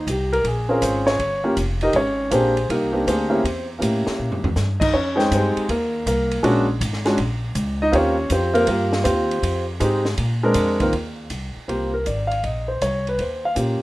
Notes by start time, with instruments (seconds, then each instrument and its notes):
0.07 upright bass C2, grand piano G4, kick, hi-hat pedal, ride
0.33 grand piano A#4, ride
0.44 upright bass A#1, grand piano G#4, kick, ride
0.69 grand piano C4 C#4 F4 G#4 A#4
0.82 upright bass G#1, grand piano C5, kick, hi-hat pedal, ride
1.06 grand piano C#5, snare
1.19 upright bass G1, kick, ride
1.44 grand piano A#3 C#4 F4 G4
1.56 upright bass F1, kick, hi-hat pedal, ride
1.81 grand piano D#4 G4 A#4 D#5, ride
1.93 upright bass G#1, grand piano C#4 C#5, kick, ride
2.31 upright bass A#1, grand piano A#3 C4 D4 G4 G#4 C5, kick, hi-hat pedal, ride
2.57 ride
2.69 upright bass C2, grand piano A#3 D#4 G4 A#4, kick, ride
2.93 grand piano A#3 C4 D4 G4
3.07 upright bass D2, grand piano C4 G4 G#4 C5, kick, hi-hat pedal, ride
3.30 grand piano A#3 C#4 E4 G4
3.44 upright bass E2, kick, ride
3.79 upright bass A2, grand piano A#3 C#4 E4 G4, kick, hi-hat pedal, ride
4.07 muted upright bass stroke, snare
4.19 upright bass A#2
4.31 upright bass G2, floor tom
4.43 upright bass E2, floor tom
4.56 upright bass G2, snare, hi-hat pedal
4.80 grand piano D#4 D#5, kick, crash
4.94 upright bass F2, grand piano C#4 C#5, kick
5.16 grand piano G#3 C4 D#4 G5, snare
5.31 upright bass G2, grand piano C4 G4 G#4 C5, kick, hi-hat pedal, ride
5.56 muted upright bass stroke, ride
5.69 upright bass D#2, grand piano A#3 A#4, kick, ride
6.06 upright bass C2, grand piano A#3 A#4, kick, hi-hat pedal, ride
6.31 ride
6.43 upright bass A#1, grand piano G#3 C#4 D4 F#4, kick, ride
6.81 upright bass G#1, kick, hi-hat pedal, ride
6.93 snare
7.05 grand piano G#3 C#4 D4 F#4, snare, ride
7.18 upright bass A#1, kick, ride
7.55 upright bass C#2, kick, hi-hat pedal, ride
7.82 grand piano D#4 D#5
7.92 upright bass D#2, grand piano A#3 C4 F4 G4 C#5, kick, ride
7.96 grand piano C#4
8.30 upright bass F2, grand piano C4 F4 G4 C5, kick, hi-hat pedal, ride
8.54 grand piano A#3 C4 F4 A#4, ride
8.67 upright bass G2, grand piano A#3 F4 G4 A#4, kick, ride
8.93 snare
9.04 upright bass D#2, grand piano C4 F4 G4 C5, kick, hi-hat pedal, ride
9.31 ride
9.43 upright bass F2, kick, ride
9.80 upright bass G#2, grand piano G#3 C4 D#4 G4, kick, hi-hat pedal, ride
10.05 snare
10.18 upright bass A#2, kick, ride
10.43 grand piano G#3 C4 D4 A#4
10.54 upright bass F2, kick, hi-hat pedal, ride
10.80 grand piano D#3 A#3 C4 F4 A#4, kick, ride
10.93 upright bass D#2, kick, ride
11.30 upright bass C2, kick, hi-hat pedal, ride
11.56 muted upright bass stroke
11.68 upright bass C2, grand piano A#3 C4 F4 G4 C5, kick, ride
11.94 grand piano A#4
12.06 upright bass G#1, grand piano D5, kick, hi-hat pedal, ride
12.27 grand piano F5
12.31 ride
12.43 upright bass A#1, grand piano D#5, kick, ride
12.68 grand piano C5
12.81 upright bass C2, grand piano C#5, kick, hi-hat pedal, ride
13.07 grand piano B4, ride
13.19 upright bass D#2, grand piano C5, kick, ride
13.45 grand piano F5
13.55 upright bass A#2, grand piano A#3 C#4 F4 G4, kick, hi-hat pedal, ride